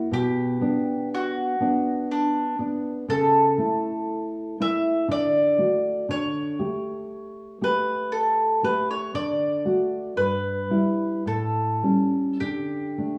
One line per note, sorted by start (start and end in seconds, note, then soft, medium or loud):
0.11 0.61 B2 medium
0.11 1.08 G4 medium
0.61 1.55 B3 soft
0.61 1.55 D4 soft
1.14 2.06 F#4 medium
1.60 2.55 B3 soft
1.60 2.55 D4 soft
2.11 2.56 D4 medium
2.59 3.05 B3 soft
2.59 3.05 D4 soft
3.08 3.58 C#3 medium
3.08 4.57 A4 medium
3.58 4.56 A3 soft
3.58 4.56 E4 soft
4.60 5.05 A3 soft
4.60 5.06 E4 soft
4.60 5.07 E5 medium
5.08 5.57 D3 medium
5.08 6.06 D5 medium
5.58 6.05 A3 soft
5.58 6.05 F#4 soft
6.09 6.58 D3 soft
6.09 7.58 C#5 medium
6.59 7.57 A3 soft
6.59 7.57 G4 soft
7.61 8.60 A3 soft
7.61 8.60 G4 soft
7.61 8.11 B4 medium
8.12 8.60 A4 soft
8.63 9.10 A3 soft
8.63 9.11 G4 soft
8.63 8.88 B4 medium
8.91 9.14 C#5 soft
9.14 9.64 D3 soft
9.14 10.13 D5 medium
9.65 10.13 A3 soft
9.65 10.13 F#4 soft
10.16 10.69 G2 soft
10.16 11.23 B4 medium
10.70 11.22 G3 soft
10.70 11.23 E4 soft
11.26 11.81 A2 soft
11.26 12.37 A4 soft
11.83 12.37 G3 soft
11.83 12.37 C#4 soft
12.40 12.96 D3 soft
12.40 13.18 G4 soft
12.98 13.18 A3 soft
12.98 13.18 D4 soft